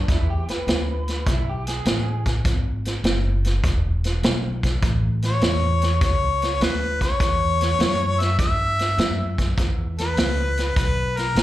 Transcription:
0.08 E2 E4, kick, snare, closed hi-hat
0.30 G4
0.48 B4, muted upright bass stroke, snare, closed hi-hat
0.67 D2, snare, closed hi-hat
1.08 snare, closed hi-hat
1.26 B1 E4, kick, snare, closed hi-hat
1.49 G4
1.67 G#4, snare, closed hi-hat
1.85 A1, snare, closed hi-hat
2.26 kick, snare, closed hi-hat
2.45 G#1, kick, snare, closed hi-hat
2.85 snare, closed hi-hat
3.04 F#1, snare, closed hi-hat
3.44 snare, closed hi-hat
3.64 E1, kick, snare, closed hi-hat
4.04 snare, closed hi-hat
4.23 B1, snare, closed hi-hat
4.63 kick, snare, closed hi-hat
4.83 A1, kick, snare, closed hi-hat
5.22 C#5, snare, closed hi-hat
5.41 E2, snare, closed hi-hat
5.82 snare, closed hi-hat
6.01 C#2 C#5, kick, snare, closed hi-hat
6.42 snare, closed hi-hat
6.61 D2 B4, snare, closed hi-hat
7.01 C#5, kick, snare, closed hi-hat
7.20 E2, kick, snare, closed hi-hat
7.61 snare, closed hi-hat
7.79 F#2, snare, closed hi-hat
8.20 E5, snare, closed hi-hat
8.39 G2 E5, kick, snare, closed hi-hat
8.79 snare, closed hi-hat
8.98 F#2, snare, closed hi-hat
9.38 kick, snare, closed hi-hat
9.58 E2, kick, snare, closed hi-hat
9.98 B4, snare, closed hi-hat
10.17 C#2, snare, closed hi-hat
10.57 snare, closed hi-hat
10.76 B1 B4, kick, snare, closed hi-hat
11.17 A#4, snare, closed hi-hat
11.35 G#1, snare, closed hi-hat

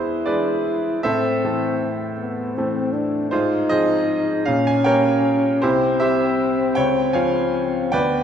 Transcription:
Already playing: E2 E3 G#3 D4 E4 G#4 B4 C5
0.26 E3 G#3 D4 G#4 B4 D5
1.03 A2 C4 A4 C5 E5
1.45 E3 A3 C4
2.18 B3
2.56 E3 A3 C4
2.93 D4
3.31 G#2 D#4 F4 G#4 C5
3.69 F3 C4 G#4 C5 D#5
4.45 A#2 C#4 F5
4.67 G#5
4.84 G3 A#3 C#4 A#4 C#5 G5
5.62 C2 C4 E4 G4 C5
6.00 G3 C4 G4 C5 E5
6.75 C#2 C#5 G5
7.13 F3 C#4 F4 C#5 F5 G#5
7.92 D2 B3 B4 D5 G5

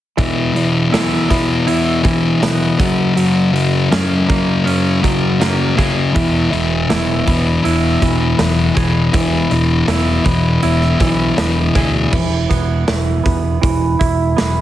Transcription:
0.17 E2 B2 E3, kick, open hi-hat
0.54 E2 B2 E3, open hi-hat
0.91 E2 B2 E3 E4, snare, open hi-hat
1.29 E2 B2 E3 B3, kick, open hi-hat
1.67 E2 B2 E3 E4, open hi-hat
2.04 E2 B2 E3, kick, open hi-hat
2.41 E2 B2 E3 B3, snare, open hi-hat
2.79 F#2 C#3 F#3, kick, open hi-hat
3.16 F#2 C#3 F#3, open hi-hat
3.51 F#2 C#3 F#3
3.56 open hi-hat
3.90 F#2 C#3 F#3 C#4, snare, open hi-hat
4.27 F#2 C#3 F#3 A#3, kick, open hi-hat
4.64 F#2 C#3 F#3 C#4, open hi-hat
5.01 F#2 C#3 F#3, kick, open hi-hat
5.39 F#2 C#3 F#3 A#3, snare, open hi-hat
5.76 F#2 C#3 F#3 G#4, kick, open hi-hat
6.13 E1 E2 B2 E3, kick, open hi-hat
6.51 E1 E2 B2 E3, open hi-hat
6.89 E1 E2 B2 E3 E4, snare, open hi-hat
7.26 E1 E2 B2 E3 B3, kick, open hi-hat
7.63 E1 E2 B2 E3 E4, open hi-hat
8.02 E1 E2 B2 E3, kick, open hi-hat
8.38 E1 E2 B2 E3 B3, snare, open hi-hat
8.75 E1 E2 B2 E3 G#4, kick, open hi-hat
9.13 E1 E2 B2 E3, kick, open hi-hat
9.51 E1 E2 B2 E3, open hi-hat
9.88 E1 E2 B2 E3 E4, snare, open hi-hat
10.24 E1 E2 B2 E3 B3, kick, open hi-hat
10.62 E1 E2 B2 E3 E4, open hi-hat
10.81 snare
11.00 B1 E2 B2 E3, kick, open hi-hat
11.37 E1 E2 B2 E3 B3, snare, open hi-hat
11.75 D2 E2 B2 E3 G#4, kick, open hi-hat
12.12 E1 E3, kick, crash
12.49 E1 B3, kick, open hi-hat
12.87 E1 E3, snare, open hi-hat
13.24 E1 B3, kick, open hi-hat
13.62 E1 E3, kick, open hi-hat
13.99 E1 E4, kick, open hi-hat
14.37 E1 B3, snare, open hi-hat

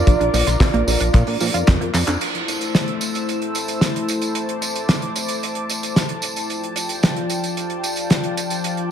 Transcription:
Already playing: F4 A#4 D5
0.07 A#1 F3, kick, closed hi-hat, tambourine
0.20 A#1 D4, closed hi-hat
0.34 A#1 F3, open hi-hat, tambourine
0.47 A#1 F4, snare, closed hi-hat, tambourine
0.60 A#1 F3, kick, snare, clap, open hi-hat
0.74 A#1 A#3, closed hi-hat
0.87 A#1 F3, open hi-hat, tambourine
1.00 A#1 D4, closed hi-hat, tambourine
1.14 A#2 F3, kick, clap, closed hi-hat, tambourine
1.27 A#2 D4, open hi-hat
1.40 A#2 F3, open hi-hat, tambourine
1.54 F2 F4, closed hi-hat, tambourine
1.67 F2 F3, kick, snare, clap, closed hi-hat, tambourine
1.81 F2 A#3, closed hi-hat
1.94 F2 F3, clap, open hi-hat, tambourine
2.07 F2 D4, clap, closed hi-hat, tambourine
2.21 A3 E4 C5 A5 E6, closed hi-hat, crash, tambourine
2.35 closed hi-hat
2.48 closed hi-hat, tambourine
2.61 closed hi-hat, tambourine
2.75 snare, closed hi-hat, tambourine
2.88 closed hi-hat
3.01 closed hi-hat, tambourine
3.15 closed hi-hat, tambourine
3.29 closed hi-hat, tambourine
3.42 closed hi-hat
3.55 closed hi-hat, tambourine
3.68 closed hi-hat, tambourine
3.81 snare, closed hi-hat, tambourine
3.96 closed hi-hat
4.08 closed hi-hat, tambourine
4.22 closed hi-hat, tambourine
4.35 D6, closed hi-hat, tambourine
4.49 closed hi-hat
4.62 closed hi-hat, tambourine
4.75 closed hi-hat, tambourine
4.89 snare, closed hi-hat, tambourine
5.02 closed hi-hat
5.16 closed hi-hat, tambourine
5.28 closed hi-hat, tambourine
5.43 closed hi-hat, tambourine
5.55 closed hi-hat
5.70 closed hi-hat, tambourine
5.83 closed hi-hat, tambourine
5.96 snare, closed hi-hat, tambourine
6.09 closed hi-hat
6.22 closed hi-hat, tambourine
6.36 closed hi-hat, tambourine
6.50 F3 F4 D5 G5, closed hi-hat, tambourine
6.64 closed hi-hat
6.76 closed hi-hat, tambourine
6.89 closed hi-hat, tambourine
7.03 snare, closed hi-hat, tambourine
7.16 closed hi-hat
7.30 closed hi-hat, tambourine
7.44 closed hi-hat, tambourine
7.57 closed hi-hat, tambourine
7.70 closed hi-hat
7.84 closed hi-hat, tambourine
7.96 closed hi-hat, tambourine
8.10 snare, closed hi-hat, tambourine
8.24 closed hi-hat
8.37 closed hi-hat, tambourine
8.50 closed hi-hat, tambourine
8.64 closed hi-hat, tambourine
8.77 closed hi-hat

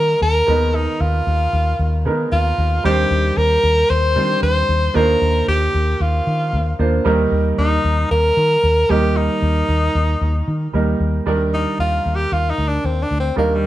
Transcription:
Already playing: D#3 G3 A#3 D#4 A#4
0.22 D#2 A#4
0.47 D#2 D#3 G#3 B3 D#4 A#4
0.75 D#4
1.00 D#2 F4
1.27 D#2
1.53 D#2
1.79 D#2
2.05 D#3 G#3 B3 D#4 A#4
2.32 D#2 F4
2.58 D#2
2.84 D#2 D#3 G3 C4 D4 G4 C5
3.11 D#2
3.37 D#2 A#4
3.63 D#2
3.90 D#2 C5
4.15 D#3 G3 C4 D4 C5
4.42 D#2 C5
4.69 D#2
4.94 D#2 D#3 A#3 D4 F4 A#4 C5
5.22 D#2
5.48 D#2 G4
5.74 D#2
6.00 D#2 F4
6.27 D#3
6.53 D#2
6.79 D#2 A#3 D4 F4 C5
7.05 D#2 D#3 G3 A#3 D#4 A#4
7.32 D#2
7.58 D#2 D#4
7.84 D#2
8.11 D#2 A#4
8.37 D#3
8.63 D#2
8.89 D#2 D#3 G3 A#3 D#4 G4 A#4
9.17 D#4
9.42 D#2
9.69 D#2
9.95 D#2
10.21 D#2
10.48 D#3
10.73 D#2 G3 A#3 D#4 A#4
11.00 D#2
11.26 D#2 D#3 G3 D4 D#4 A#4
11.54 D#4
11.79 D#2 F4
12.06 D#2
12.15 G4
12.32 D#2 F4
12.50 D#4
12.58 D2
12.68 D4
12.84 D#2 C4
13.03 D4
13.11 D2
13.20 C4
13.36 D#2 D#3 G3 A#3 D4 D#4 A#4
13.55 G3

